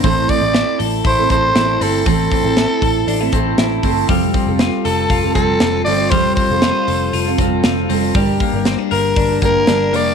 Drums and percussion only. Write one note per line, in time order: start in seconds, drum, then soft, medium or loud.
0.04 kick loud
0.04 hi-hat pedal medium
0.04 open hi-hat loud
0.29 kick medium
0.29 hi-hat pedal medium
0.29 open hi-hat medium
0.54 snare loud
0.54 hi-hat pedal medium
0.54 open hi-hat medium
0.80 hi-hat pedal medium
0.80 open hi-hat medium
1.05 kick medium
1.05 hi-hat pedal medium
1.05 open hi-hat medium
1.30 kick medium
1.30 hi-hat pedal medium
1.30 open hi-hat medium
1.55 snare loud
1.55 hi-hat pedal medium
1.55 open hi-hat medium
1.81 hi-hat pedal medium
1.81 open hi-hat medium
2.06 kick loud
2.06 hi-hat pedal medium
2.06 open hi-hat medium
2.32 kick medium
2.32 hi-hat pedal medium
2.32 open hi-hat medium
2.57 snare loud
2.57 hi-hat pedal medium
2.57 open hi-hat medium
2.82 kick medium
2.82 hi-hat pedal medium
2.82 open hi-hat medium
3.08 hi-hat pedal medium
3.08 open hi-hat medium
3.32 kick medium
3.32 hi-hat pedal medium
3.32 open hi-hat medium
3.58 snare loud
3.58 hi-hat pedal medium
3.58 open hi-hat medium
3.83 kick medium
3.83 hi-hat pedal medium
3.83 open hi-hat medium
4.09 kick loud
4.09 hi-hat pedal medium
4.09 open hi-hat loud
4.34 kick medium
4.34 hi-hat pedal medium
4.34 open hi-hat medium
4.59 snare loud
4.59 hi-hat pedal medium
4.59 open hi-hat medium
4.85 hi-hat pedal medium
4.85 open hi-hat medium
5.10 kick medium
5.10 hi-hat pedal medium
5.10 open hi-hat medium
5.35 kick medium
5.35 hi-hat pedal medium
5.35 open hi-hat medium
5.60 snare loud
5.60 hi-hat pedal medium
5.60 open hi-hat medium
5.86 hi-hat pedal medium
5.86 open hi-hat medium
6.11 kick loud
6.11 hi-hat pedal medium
6.11 open hi-hat medium
6.37 kick medium
6.37 hi-hat pedal medium
6.37 open hi-hat medium
6.62 snare loud
6.62 hi-hat pedal medium
6.62 open hi-hat medium
6.88 hi-hat pedal medium
6.88 open hi-hat medium
7.13 hi-hat pedal medium
7.13 open hi-hat medium
7.38 kick medium
7.38 hi-hat pedal medium
7.38 open hi-hat medium
7.64 snare loud
7.64 hi-hat pedal medium
7.64 open hi-hat medium
7.89 hi-hat pedal medium
7.89 open hi-hat medium
8.15 kick loud
8.15 hi-hat pedal medium
8.15 open hi-hat loud
8.40 kick medium
8.40 hi-hat pedal medium
8.40 open hi-hat medium
8.65 snare loud
8.65 hi-hat pedal medium
8.65 open hi-hat medium
8.91 hi-hat pedal medium
8.91 open hi-hat medium
9.16 kick loud
9.16 hi-hat pedal medium
9.16 open hi-hat medium
9.42 kick medium
9.42 hi-hat pedal medium
9.42 open hi-hat medium
9.67 snare loud
9.67 hi-hat pedal medium
9.67 open hi-hat medium
9.93 hi-hat pedal medium
9.93 open hi-hat medium